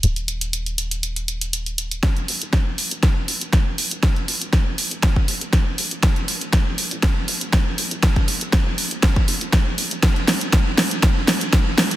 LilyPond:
<<
  \new Staff \with { instrumentName = "Analog synth bass" } { \clef bass \time 4/4 \key bes \major \tempo 4 = 120 ees,,1 | r8 f,,16 f,,16 r16 f,,16 r16 f,,16 r8 f,,16 f,,16 r8 f,,16 f,,16 | r8 f,,16 f,,16 r16 f,16 r16 f,,16 r8 f,,16 f,,16 r8 ees,,16 ees,,16 | r8 bes,,16 bes,,16 r16 bes,,16 r16 bes,,16 r8 bes,,16 bes,,16 r8 bes,,16 bes,,16 |
r8 bes,,16 bes,,16 r16 bes,16 r16 bes,,16 r8 bes,,16 bes,,16 r8 f,,16 f,,16 | r8. f,,16 r8. f,,16 r8. f,,16 r8. f,,16 | }
  \new DrumStaff \with { instrumentName = "Drums" } \drummode { \time 4/4 hh16 hh16 hh16 hh16 hh16 hh16 hh16 hh16 hh16 hh16 hh16 hh16 hh16 hh16 hh16 hh16 | <hh bd sn>16 hh16 hho16 hh16 <hh bd sn>8 hho16 hh16 <hh bd sn>8 hho16 hh16 <hh bd sn>8 hho16 hh16 | <hh bd sn>16 hh16 hho16 hh16 <hh bd sn>8 hho16 hh16 <hh bd sn>16 bd16 hho16 hh16 <hh bd sn>8 hho16 hh16 | <hh bd sn>16 hh16 hho16 hh16 <hh bd sn>8 hho16 hh16 <hh bd sn>8 hho16 hh16 <hh bd sn>8 hho16 hh16 |
<hh bd sn>16 <hh bd>16 hho16 hh16 <hh bd sn>8 hho16 hh16 <hh bd sn>16 bd16 hho16 hh16 <hh bd sn>8 hho16 hh16 | <hh bd sn>16 hh16 <hho sn>16 hh16 <hh bd sn>8 <hho sn>16 hh16 <hh bd sn>8 <hho sn>16 hh16 <hh bd sn>8 <hho sn>16 hh16 | }
>>